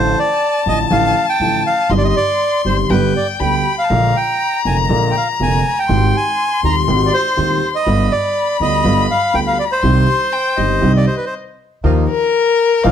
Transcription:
Already playing: grand piano A1 A2 D3 F3 A3 F4, upright bass A1, bandoneon C5, violin A5
0.19 bandoneon D5
0.66 grand piano A1 A2 D3 F3 A3 F4, upright bass A1, bandoneon D#5
0.90 upright bass A1, grand piano A1 A2 D3 F3 A3 F4, bandoneon F5
1.29 bandoneon G5
1.40 upright bass A1, grand piano A1 A2 D3 F3 A3 F4
1.67 bandoneon F5
1.90 upright bass G1, grand piano G1 G2 D#3 G3 C4 G4, bandoneon D#5, violin C6
1.98 bandoneon D5
2.04 bandoneon D#5
2.09 bandoneon D#5
2.16 bandoneon D5
2.65 upright bass G1, grand piano G1 G2 D#3 G3 C4 G4, bandoneon C5
2.90 upright bass G1, grand piano G1 G2 D3 G3 B3 G4, bandoneon B4, violin G5
3.16 bandoneon D5
3.40 upright bass D2, grand piano D2 D3 G3 B3 G4, bandoneon G5, violin B5
3.78 bandoneon F5
3.84 violin A5
3.90 upright bass A#1, grand piano A#1 A#2 D3 G#3 A#3 F4, violin A#5
4.16 bandoneon G5
4.65 upright bass F1, grand piano F1 F2 D3 G#3 A#3 F4, bandoneon G#5
4.89 grand piano A#1 A#2 D3 G#3 A#3 F4, upright bass A#1
5.11 bandoneon G5
5.17 bandoneon F5
5.40 upright bass F1, grand piano F1 F2 D3 G#3 A#3 F4, bandoneon G#5
5.79 bandoneon G5
5.89 upright bass G#1, grand piano G#1 G#2 D#3 G#3 C4 G4, violin C6
6.17 bandoneon G#5
6.63 grand piano D#1 D#2 D#3 G#3 C4 G4, upright bass D#2, bandoneon A#5
6.88 upright bass G#1, grand piano G#1 G#2 D#3 G#3 C4 G4
7.06 bandoneon D5
7.14 bandoneon C5
7.36 grand piano D#1 D#2 D#3 G#3 C4 G4, upright bass D#2
7.75 bandoneon D#5
7.86 upright bass G1, grand piano G1 G2 D3 G3 B3 F4, violin B5
8.12 bandoneon D5
8.60 upright bass D2, grand piano D2 D3 G3 B3 F4, bandoneon D#5
8.84 grand piano G1 G2 D3 G3 B3 F4, upright bass G1
9.11 bandoneon F5
9.34 upright bass D2, grand piano D2 D3 G3 B3 F4, bandoneon G5
9.47 bandoneon F5
9.59 bandoneon D5
9.72 bandoneon C5
9.82 upright bass C2, grand piano C2 C3 D#3 G3 C4 G4, violin C6
10.33 violin G5
10.57 grand piano G1 G2 D#3 G3 C4 G4, upright bass G1, violin D#5
10.81 grand piano C2 C3 D#3 G3 C4 G4, upright bass C2
10.97 bandoneon D5
11.07 bandoneon C5
11.17 bandoneon B4
11.26 bandoneon C5
11.84 grand piano D#2 D#3 F3 A#3 F4, upright bass D#2, bandoneon F3 A#3 D#4
12.10 violin A#4
12.84 upright bass A#1, grand piano A#1 A#2 D#3 F3 A#3 F4, bandoneon F3 A#3 D#4, violin F5

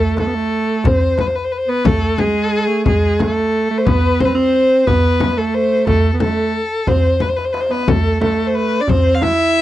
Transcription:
Already playing: alto saxophone A3, violin A4
0.17 alto saxophone A3, violin A4, darbuka tek, frame drum
0.27 alto saxophone B3
0.34 alto saxophone A3
0.84 alto saxophone C4, violin C5, darbuka dum, frame drum
1.18 violin B4, darbuka tek, frame drum
1.27 violin C5
1.35 violin B4
1.44 violin C5
1.52 violin B4, darbuka ka
1.58 violin C5
1.68 alto saxophone B3, violin B4
1.85 alto saxophone A3, violin A4, darbuka dum, frame drum
2.18 alto saxophone G#3, violin G#4, frame drum
2.53 darbuka ka
2.68 alto saxophone A3
2.85 alto saxophone G#3, violin G#4, frame drum, darbuka dum
3.19 alto saxophone A3, violin A4, darbuka tek, frame drum
3.53 darbuka ka
3.70 alto saxophone A3
3.78 violin C5
3.86 alto saxophone B3, violin B4, darbuka dum, frame drum
4.20 alto saxophone C4, violin C5, frame drum
4.25 violin B4
4.35 alto saxophone C4, violin C5
4.87 alto saxophone B3, violin B4, darbuka dum, frame drum
5.20 darbuka tek, frame drum
5.37 alto saxophone A3, violin A4
5.54 violin C5, darbuka ka
5.87 alto saxophone A3, violin A4, darbuka dum, frame drum
6.13 alto saxophone B3
6.20 alto saxophone A3, violin A4, darbuka tek, frame drum
6.54 darbuka ka
6.87 alto saxophone C4, violin C5, darbuka dum, frame drum
7.20 violin B4, darbuka tek, frame drum
7.29 violin C5
7.36 violin B4, darbuka ka
7.45 violin C5
7.53 violin B4, darbuka tek
7.60 violin C5
7.70 alto saxophone B3, violin B4, darbuka ka
7.88 alto saxophone A3, violin A4, darbuka dum, frame drum
8.21 alto saxophone A3, violin A4, darbuka tek, frame drum
8.47 violin C5
8.55 violin B4, darbuka ka
8.81 alto saxophone D4, violin D5
8.88 alto saxophone C4, violin C5, darbuka dum, frame drum
9.15 violin F5
9.22 alto saxophone E4, violin E5, darbuka tek, frame drum
9.55 darbuka ka

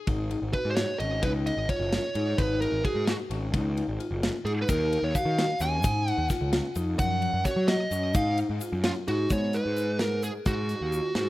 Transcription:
0.07 picked electric bass G#1, vibraphone D#4, kick, ride
0.31 ride
0.42 picked electric bass G#1
0.53 vibraphone F#4, lead electric guitar B4, kick, ride
0.65 picked electric bass G#2
0.71 lead electric guitar C5
0.75 lead electric guitar C#5, snare, ride
0.99 picked electric bass G#1, vibraphone C#4, lead electric guitar D#5, ride
1.23 picked electric bass C#2, vibraphone D#4, lead electric guitar B4, kick, ride
1.46 lead electric guitar D#5, ride
1.57 picked electric bass G#1
1.69 vibraphone F4, lead electric guitar C#5, kick, ride
1.79 picked electric bass F#1
1.93 snare, ride
2.15 picked electric bass G#2, vibraphone D#4, ride
2.38 picked electric bass G#1, vibraphone D#4, lead electric guitar B4, kick, ride
2.61 lead electric guitar A#4, ride
2.72 picked electric bass G#1
2.85 vibraphone F#4, lead electric guitar G#4, kick, ride
2.95 picked electric bass G#2
3.07 lead electric guitar F#4, snare, ride
3.30 picked electric bass G#1, vibraphone C#4, ride
3.53 picked electric bass C#2, vibraphone D#4, kick, ride
3.77 ride
3.88 picked electric bass G#1
4.00 vibraphone F4, ride
4.11 picked electric bass F#1
4.23 snare, ride
4.45 picked electric bass G#2, vibraphone D#4, lead electric guitar G#4, ride
4.62 lead electric guitar B4
4.69 picked electric bass D#2, vibraphone D#4, lead electric guitar A#4, kick, ride, shaker
4.93 ride
5.03 picked electric bass D#2, lead electric guitar C#5
5.15 vibraphone F#4, lead electric guitar F5, kick, ride, shaker
5.25 picked electric bass D#3
5.39 snare, ride
5.60 picked electric bass D#2, vibraphone C#4, lead electric guitar G#5, snare, ride, shaker
5.83 picked electric bass G#2, vibraphone D#4, kick, ride, shaker
6.08 lead electric guitar F#5, ride
6.18 picked electric bass D#2
6.29 vibraphone F4, kick, snare, ride, shaker
6.41 picked electric bass C#2
6.53 snare, ride
6.75 picked electric bass F2, vibraphone D#4, ride, shaker
6.99 picked electric bass F#2, vibraphone F3, lead electric guitar F#5, kick, ride, shaker
7.22 ride
7.33 picked electric bass F#2
7.45 vibraphone F#4, lead electric guitar C#5, kick, snare, ride, shaker
7.56 picked electric bass F#3
7.68 lead electric guitar D#5, snare, ride
7.91 picked electric bass F#2, vibraphone C#4, ride, shaker
8.14 picked electric bass G#2, vibraphone D#4, lead electric guitar F5, kick, ride, shaker
8.38 ride, shaker
8.50 picked electric bass G#2
8.61 vibraphone F4, ride, shaker
8.73 picked electric bass F#2
8.84 lead electric guitar F4, snare, ride
9.08 picked electric bass G#2, vibraphone D#4, lead electric guitar F#4, ride
9.30 picked electric bass G#2, vibraphone B3, lead electric guitar C#5, kick, closed hi-hat, shaker
9.53 vibraphone D#4, lead electric guitar B4, closed hi-hat, shaker
9.66 picked electric bass G#2
9.77 closed hi-hat, shaker
9.99 lead electric guitar A#4, snare, closed hi-hat
10.23 lead electric guitar G#4, vibraphone G#4, closed hi-hat, shaker
10.46 picked electric bass G#2, lead electric guitar F#4, vibraphone F#4, kick, closed hi-hat, shaker
10.69 closed hi-hat, shaker
10.81 picked electric bass D#2
10.92 vibraphone F4, closed hi-hat, shaker
11.15 picked electric bass G#2, lead electric guitar F#4, vibraphone F#4, snare, closed hi-hat

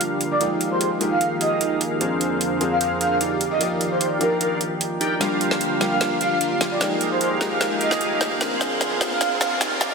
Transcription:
Already playing: analog synth pad D3 G3 A#3 F4, felt piano F3 G3 A#3 D4 G4
0.01 analog polysynth D4 F4 G4 A#4 F5, closed hi-hat
0.21 closed hi-hat
0.31 analog polysynth D4 F4 G4 A#4 F5, soft synth lead D5
0.39 analog synth pad D#3 G#3 A#3 G5, felt piano F3 G#3 A#3 D#4, analog polysynth D#4 G4 G#4 A#4 F5, closed hi-hat
0.43 felt piano G5
0.61 closed hi-hat
0.71 soft synth lead C5
0.81 soft synth lead C5, closed hi-hat
0.99 felt piano F3 G#3 A#3 D#4 G4, analog polysynth D#4 G4 G#4 A#4 F5, closed hi-hat
1.11 soft synth lead F5
1.21 analog polysynth D#4 G4 G#4 A#4 F5, closed hi-hat
1.41 analog polysynth D#4 G4 G#4 A#4 F5, soft synth lead D#5, closed hi-hat
1.61 analog polysynth D#4 G4 G#4 A#4 F5, closed hi-hat
1.81 closed hi-hat
1.91 analog polysynth D#4 G4 G#4 A#4 F5
1.99 analog synth pad F2 D3 C4 G#4, felt piano F3 A#3 C4 D4, analog polysynth D4 G#4 A#4 C5 F5, closed hi-hat
2.03 felt piano G#4
2.21 closed hi-hat
2.41 closed hi-hat
2.59 felt piano F3 A#3 C4 D4 G#4, analog polysynth D4 G#4 A#4 C5 F5, closed hi-hat
2.71 soft synth lead F5
2.81 analog polysynth D4 G#4 A#4 C5 F5, soft synth lead F5, closed hi-hat
3.01 analog polysynth D4 G#4 A#4 C5 F5, soft synth lead F5, closed hi-hat
3.11 soft synth lead F5
3.21 analog polysynth D#4 G4 A#4 D5 F5, closed hi-hat
3.40 analog synth pad D#3 F4 D5 G5, closed hi-hat
3.51 analog polysynth D#4 G4 A#4 D5 F5, soft synth lead D#5
3.59 felt piano F3 A#3 D#4 D5, analog polysynth D#4 G4 A#4 D5 F5, closed hi-hat
3.63 felt piano G4
3.81 closed hi-hat
3.91 soft synth lead C5
4.01 soft synth lead C5, closed hi-hat
4.19 felt piano F3 A#3 D4 D#4, analog polysynth D#4 G4 A#4 D5 F5, soft synth lead A#4, closed hi-hat
4.23 felt piano G4
4.41 analog polysynth D#4 G4 A#4 D5 F5, soft synth lead A#4, closed hi-hat
4.51 soft synth lead A#4
4.61 closed hi-hat
4.81 closed hi-hat
5.01 analog polysynth D#4 G4 A#4 D5 G5, closed hi-hat
5.19 analog synth pad D3 A#3, felt piano F3 G3 A#3 D4 G4, analog polysynth D4 F4 G4 A#4 F5, snare, closed hi-hat, riser
5.41 closed hi-hat
5.51 snare
5.61 closed hi-hat
5.79 felt piano F3 G3 A#3 D4 G4, analog polysynth D4 F4 G4 A#4 F5, snare, closed hi-hat
5.91 soft synth lead F5
6.01 analog polysynth D4 F4 G4 A#4 F5, snare, closed hi-hat
6.21 analog polysynth D4 F4 G4 A#4 F5, soft synth lead F5, closed hi-hat
6.31 soft synth lead F5
6.41 analog polysynth D4 F4 G4 A#4 F5, closed hi-hat
6.61 snare, closed hi-hat
6.71 analog polysynth D4 F4 G4 A#4 F5, soft synth lead D5
6.79 analog synth pad D#3 G#3 A#3, felt piano F3 G#3 A#3 D#4, analog polysynth D#4 G4 G#4 A#4 F5, snare, closed hi-hat
6.83 felt piano G5
7.01 closed hi-hat
7.11 soft synth lead C5
7.21 soft synth lead C5, closed hi-hat
7.39 felt piano F3 G#3 A#3 D#4, analog polysynth D#4 G4 G#4 A#4 F5, snare, closed hi-hat
7.43 felt piano G4
7.51 soft synth lead F5
7.61 analog polysynth D#4 G4 G#4 A#4 F5, snare, closed hi-hat
7.81 analog polysynth D#4 G4 G#4 A#4 F5, soft synth lead D#5, closed hi-hat
7.91 snare
8.01 analog polysynth D#4 G4 G#4 A#4 F5, closed hi-hat
8.21 snare, closed hi-hat
8.31 analog polysynth D#4 G4 G#4 A#4 F5
8.39 analog synth pad F2 D3 G#4 C5, felt piano F3 A#3 C4 D4 G#4, analog polysynth D4 G#4 A#4 C5 F5, snare, closed hi-hat
8.61 snare, closed hi-hat
8.81 snare, closed hi-hat
8.99 felt piano F3 A#3 C4 D4 G#4, analog polysynth D4 G#4 A#4 C5 F5, snare, closed hi-hat
9.11 soft synth lead F5
9.21 analog polysynth D4 G#4 A#4 C5 F5, soft synth lead F5, snare, closed hi-hat
9.41 analog polysynth D4 G#4 A#4 C5 F5, soft synth lead F5, snare, closed hi-hat
9.51 soft synth lead F5
9.61 analog polysynth D#4 G4 A#4 D5 F5, snare, closed hi-hat
9.81 analog synth pad D#3 G3 F4 D5, snare, closed hi-hat
9.91 analog polysynth D#4 G4 A#4 D5 F5, soft synth lead D#5

